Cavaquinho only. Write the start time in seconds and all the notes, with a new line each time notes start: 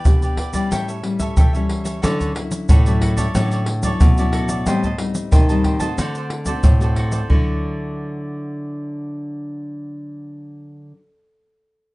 Already playing: G4 B4 D5
0.22 G4 B4 D5
0.37 E4 G4 B4 D5
0.54 G4 B4 D5
0.71 G4 A4 C#5 E5
0.88 A4 C#5 E5
1.05 muted cavaquinho stroke
1.19 A4 C#5 E5
1.37 G4 A4 C#5 E5
1.53 A4 C#5 E5
1.84 A4 C#5 E5
2.02 F#4 A4 C#5 D5
2.19 A4 C#5 D5
2.35 muted cavaquinho stroke
2.69 F#4 A4 C#5 D5
2.86 A4 C#5 D5
3.01 F#4 A4 C#5 D5
3.17 A4 C#5 D5
3.35 F#4 A4 C#5 D5
3.52 A4 C#5 D5
3.68 muted cavaquinho stroke
3.84 A4 C#5 D5
4.19 A4 C#5 D5
4.32 F#4 A4 C#5 D5
4.49 A4 C#5 D5
4.66 G4 C5 D#5 A5
4.84 C5 D#5 A5
4.99 muted cavaquinho stroke
5.31 G4 C5 D#5 A5
5.49 C5 D#5 A5
5.64 G4 C5 D#5 A5
5.80 C5 D#5 A5
5.98 F#4 A4 C5 D5
6.16 A4 C5 D5
6.31 muted cavaquinho stroke
6.46 A4 C5 D5
6.82 A4 C5 D5
6.97 F#4 A4 C5 D5
7.13 A4 C5 D5
7.30 F#4 A4 C#5 D5